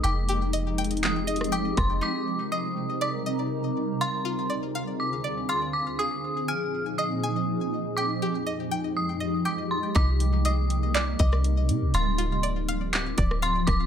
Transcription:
0.03 1.73 F1 loud
0.03 2.00 F3 medium
0.03 2.00 G#3 loud
0.03 2.00 C4 medium
0.03 2.00 D#4 medium
0.03 2.00 G4 medium
0.03 0.77 G5 loud
0.03 0.50 D6 loud
0.03 closed hi-hat medium
0.29 1.78 G4 medium
0.29 closed hi-hat medium
0.53 1.26 D#5 medium
0.53 closed hi-hat medium
0.78 1.51 G5 medium
0.78 closed hi-hat medium
0.84 closed hi-hat medium
0.91 closed hi-hat medium
0.97 closed hi-hat soft
1.03 1.50 D#6 medium
1.03 clap loud
1.03 closed hi-hat medium
1.27 2.02 D#5 medium
1.27 closed hi-hat medium
1.36 closed hi-hat medium
1.41 cross-stick medium
1.41 closed hi-hat medium
1.52 2.02 G5 medium
1.52 1.76 D6 medium
1.52 closed hi-hat medium
1.77 2.01 F1 loud
1.77 2.01 C6 medium
1.77 kick loud
1.77 cross-stick medium
1.77 closed hi-hat medium
2.01 3.98 C3 medium
2.01 3.98 G3 medium
2.01 3.98 C4 medium
2.01 3.50 D#4 medium
2.01 3.98 D#4 medium
2.01 3.98 A#4 medium
2.01 2.49 D6 loud
2.52 3.25 D#5 medium
2.52 2.98 D#6 medium
3.01 4.00 D5 loud
3.01 3.97 D6 medium
3.26 4.01 D#5 medium
4.01 5.97 D2 medium
4.01 5.97 D3 medium
4.01 5.97 C4 medium
4.01 5.97 F4 medium
4.01 7.93 G#4 medium
4.01 4.74 F5 medium
4.01 4.47 C6 loud
4.25 5.74 F4 medium
4.50 5.23 D5 medium
4.75 5.48 F5 medium
5.00 5.46 D6 medium
5.24 5.99 D5 medium
5.49 5.99 F5 medium
5.49 5.73 C6 medium
5.73 5.97 D6 medium
5.99 7.95 A#2 medium
5.99 7.95 F3 medium
5.99 7.95 C4 medium
5.99 9.92 D#4 medium
5.99 7.48 G#4 medium
5.99 6.45 D#6 loud
6.48 7.22 G#5 medium
6.48 6.95 F6 medium
6.98 7.97 D#5 medium
6.98 7.93 D#6 medium
7.23 7.98 G#5 medium
7.97 9.93 F2 medium
7.97 9.94 F3 medium
7.97 9.93 G#3 medium
7.97 9.94 G4 medium
7.97 8.70 G5 medium
7.97 8.43 D6 medium
8.22 9.71 G4 medium
8.47 9.19 D#5 medium
8.71 9.44 G5 medium
8.97 9.43 D#6 medium
9.20 9.95 D#5 medium
9.45 9.95 G5 medium
9.45 9.69 D6 medium
9.71 9.94 C6 medium
9.95 11.15 C2 loud
9.95 11.92 C3 medium
9.95 11.92 G3 medium
9.95 11.92 A#3 medium
9.95 11.44 D#4 loud
9.95 11.92 D#4 loud
9.95 10.42 D6 loud
9.95 kick loud
9.95 closed hi-hat medium
10.20 closed hi-hat medium
10.45 11.18 D#5 loud
10.45 10.92 D#6 medium
10.45 closed hi-hat medium
10.70 closed hi-hat medium
10.94 11.94 D5 loud
10.94 11.90 D6 medium
10.94 clap loud
10.94 closed hi-hat medium
11.19 11.71 C2 loud
11.19 11.94 D#5 medium
11.19 kick loud
11.19 closed hi-hat medium
11.33 cross-stick medium
11.44 closed hi-hat medium
11.69 11.83 C3 loud
11.69 closed hi-hat medium
11.81 11.93 C2 loud
11.94 13.14 D1 loud
11.94 13.86 F3 medium
11.94 13.86 C4 medium
11.94 12.67 F5 loud
11.94 12.41 C6 loud
11.94 closed hi-hat medium
12.18 13.67 F4 medium
12.18 closed hi-hat medium
12.43 13.16 D5 medium
12.43 closed hi-hat medium
12.69 13.41 F5 loud
12.69 closed hi-hat medium
12.93 13.40 D6 medium
12.93 clap loud
12.93 closed hi-hat medium
13.18 13.66 D1 loud
13.18 13.86 D5 medium
13.18 kick loud
13.18 closed hi-hat medium
13.31 cross-stick medium
13.42 13.86 F5 loud
13.42 13.66 C6 medium
13.42 closed hi-hat medium
13.67 13.86 D1 loud
13.67 13.86 D6 medium
13.67 kick loud
13.67 cross-stick loud
13.67 closed hi-hat medium

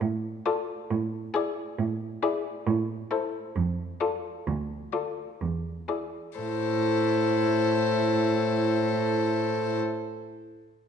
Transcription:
0.01 0.37 A2 soft
0.46 0.79 F4 soft
0.46 0.79 A4 soft
0.46 0.79 D5 soft
0.91 1.26 A2 medium
1.34 1.68 E4 soft
1.34 1.67 G#4 soft
1.34 1.68 D5 soft
1.79 2.14 A2 medium
2.23 2.56 E4 soft
2.23 2.56 G#4 soft
2.23 2.56 D5 soft
2.67 3.01 A2 medium
3.11 3.44 E4 soft
3.11 3.44 A4 soft
3.11 3.44 C5 soft
3.56 3.91 F2 medium
4.00 4.35 F4 soft
4.00 4.35 A4 soft
4.00 4.34 D5 soft
4.47 4.84 D2 medium
4.93 5.28 F4 soft
4.93 5.28 A4 soft
4.93 5.28 D5 soft
5.41 5.79 E2 soft
5.88 6.26 E4 soft
5.88 6.26 G#4 soft
5.88 6.26 D5 soft
6.39 9.80 A2 soft
6.39 9.79 E4 soft
6.39 9.79 A4 soft
6.39 9.79 C5 soft

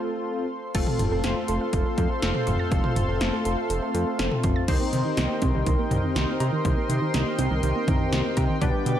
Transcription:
0.00 0.46 A3 medium
0.00 0.46 C4 medium
0.00 0.46 F4 medium
0.00 0.46 A4 medium
0.00 0.71 A4 medium
0.00 0.71 C5 medium
0.00 0.71 F5 medium
0.00 0.71 C6 medium
0.74 0.85 F1 loud
0.74 4.64 A3 medium
0.74 4.64 C4 medium
0.74 4.64 F4 medium
0.74 4.64 A4 medium
0.74 0.82 A4 medium
0.74 4.64 C5 medium
0.74 4.64 F5 medium
0.74 4.64 C6 medium
0.74 kick loud
0.74 closed hi-hat medium
0.74 crash medium
0.87 0.94 A4 medium
0.87 mid tom medium
0.99 1.10 F1 medium
0.99 1.06 A4 medium
0.99 closed hi-hat medium
0.99 mid tom loud
1.12 1.22 F1 loud
1.12 1.19 A4 medium
1.24 1.35 F1 loud
1.24 1.31 A4 medium
1.24 snare loud
1.24 closed hi-hat medium
1.36 1.43 A4 medium
1.48 1.59 F1 loud
1.48 1.56 A4 medium
1.48 closed hi-hat medium
1.61 1.68 F5 medium
1.73 1.84 F1 medium
1.73 1.80 A4 medium
1.73 kick medium
1.73 closed hi-hat medium
1.86 1.93 A4 medium
1.98 2.08 F2 loud
1.98 2.05 A4 medium
1.98 kick medium
1.98 closed hi-hat medium
2.10 2.17 A4 medium
2.22 2.33 F1 loud
2.22 2.29 A4 medium
2.22 snare loud
2.22 closed hi-hat medium
2.35 2.42 A4 medium
2.35 mid tom medium
2.47 2.58 F1 loud
2.47 2.54 C6 medium
2.47 closed hi-hat medium
2.47 mid tom loud
2.59 2.66 A6 loud
2.72 2.82 F1 loud
2.72 2.79 A4 medium
2.72 kick loud
2.72 closed hi-hat medium
2.84 2.91 A4 medium
2.84 mid tom medium
2.96 3.07 F1 medium
2.96 3.03 A4 medium
2.96 closed hi-hat medium
2.96 mid tom loud
3.09 3.19 F1 loud
3.09 3.15 A4 medium
3.21 3.31 F1 loud
3.21 3.28 A4 medium
3.21 snare loud
3.21 closed hi-hat medium
3.33 3.40 A4 medium
3.45 3.56 F1 loud
3.45 3.52 A4 medium
3.45 closed hi-hat medium
3.58 3.65 F5 medium
3.70 3.80 F1 loud
3.70 3.77 A4 medium
3.70 closed hi-hat medium
3.82 3.89 A4 medium
3.94 4.05 F2 loud
3.94 4.01 A4 medium
3.94 closed hi-hat medium
4.07 4.14 A4 medium
4.19 4.30 F1 loud
4.19 4.26 A4 medium
4.19 snare loud
4.19 closed hi-hat medium
4.31 4.38 A4 medium
4.31 mid tom medium
4.44 4.54 F1 loud
4.44 4.51 C6 medium
4.44 kick medium
4.44 closed hi-hat medium
4.44 mid tom loud
4.56 4.63 A6 loud
4.68 4.79 C2 loud
4.68 4.75 D#3 medium
4.68 8.58 C4 medium
4.68 8.58 D#4 medium
4.68 8.58 G4 medium
4.68 8.58 A#4 medium
4.68 8.58 C5 medium
4.68 8.58 D#5 medium
4.68 9.00 G5 medium
4.68 8.58 C6 medium
4.68 kick loud
4.68 closed hi-hat medium
4.68 crash loud
4.80 4.87 A#3 medium
4.93 5.03 C3 loud
4.93 5.00 D#3 medium
4.93 closed hi-hat medium
5.05 5.12 D#3 medium
5.17 5.28 C2 loud
5.17 5.25 D#3 medium
5.17 snare loud
5.17 closed hi-hat medium
5.30 5.37 A#3 medium
5.42 5.53 C2 loud
5.42 5.49 C4 medium
5.42 kick loud
5.42 closed hi-hat medium
5.54 5.65 C2 loud
5.54 5.61 D#3 medium
5.66 5.77 C2 loud
5.66 5.74 D#3 medium
5.66 kick medium
5.66 closed hi-hat medium
5.79 5.86 A#3 medium
5.91 6.02 C2 loud
5.91 5.98 D#3 medium
5.91 closed hi-hat medium
5.91 mid tom medium
6.04 6.11 D#3 medium
6.16 6.26 C2 loud
6.16 6.23 D#3 medium
6.16 snare loud
6.16 closed hi-hat medium
6.28 6.35 A#3 medium
6.40 6.51 C3 loud
6.40 6.47 G4 medium
6.40 closed hi-hat medium
6.40 cowbell medium
6.53 6.60 D#3 medium
6.65 6.75 C2 loud
6.65 6.72 D#3 medium
6.65 kick loud
6.65 closed hi-hat medium
6.77 6.84 A#3 medium
6.89 7.00 C3 loud
6.89 6.97 D#3 medium
6.89 closed hi-hat medium
7.02 7.09 D#3 medium
7.14 7.25 C2 loud
7.14 7.21 D#3 medium
7.14 snare loud
7.14 closed hi-hat medium
7.26 7.33 A#3 medium
7.38 7.49 C2 loud
7.38 7.46 C4 medium
7.38 closed hi-hat medium
7.51 7.61 C2 loud
7.51 7.58 D#3 medium
7.63 7.74 C2 loud
7.63 7.70 D#3 medium
7.63 closed hi-hat medium
7.76 7.83 A#3 loud
7.88 7.98 C2 loud
7.88 7.95 D#3 medium
7.88 kick loud
7.88 closed hi-hat medium
7.88 mid tom medium
8.00 8.07 D#3 medium
8.12 8.23 C2 loud
8.12 8.19 D#3 medium
8.12 snare loud
8.12 closed hi-hat medium
8.25 8.32 A#3 medium
8.37 8.48 C3 loud
8.37 8.44 G4 medium
8.37 kick medium
8.37 closed hi-hat medium
8.37 cowbell medium
8.49 8.56 D#3 medium
8.61 8.72 B1 loud
8.61 8.69 D3 medium
8.61 9.00 B3 medium
8.61 9.00 D4 medium
8.61 9.00 G4 medium
8.61 9.00 B4 medium
8.61 9.00 D5 medium
8.61 9.00 D6 medium
8.61 kick loud
8.61 closed hi-hat medium
8.74 8.81 G3 medium
8.86 8.97 B2 loud
8.86 8.93 D3 medium
8.86 closed hi-hat medium

